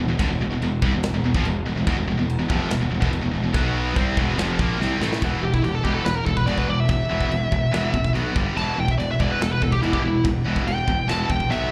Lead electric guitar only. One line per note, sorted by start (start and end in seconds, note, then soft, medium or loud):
5.43 5.53 G4 medium
5.53 5.63 E4 medium
5.63 5.75 G4 medium
5.75 5.84 A4 medium
5.84 5.94 G4 medium
5.95 6.05 A4 medium
6.05 6.15 B4 medium
6.15 6.26 A#4 medium
6.26 6.37 A4 medium
6.37 6.47 B4 medium
6.46 6.58 D5 medium
6.58 6.69 B4 medium
6.69 6.79 D5 medium
6.80 6.88 E5 medium
6.90 8.11 E5 loud
8.57 8.77 A5 loud
8.80 8.89 G5 medium
8.91 8.98 E5 loud
8.98 9.09 D5 medium
9.11 9.20 E5 medium
9.21 9.31 D5 loud
9.31 9.41 B4 medium
9.42 9.52 A4 medium
9.52 9.62 B4 medium
9.62 9.72 A4 loud
9.72 9.82 G4 medium
9.82 9.92 E4 medium
9.94 10.04 G4 medium
10.04 10.24 E4 loud
10.68 11.08 G5 medium
11.10 11.29 A5 medium
11.31 11.51 G5 loud
11.51 11.71 E5 medium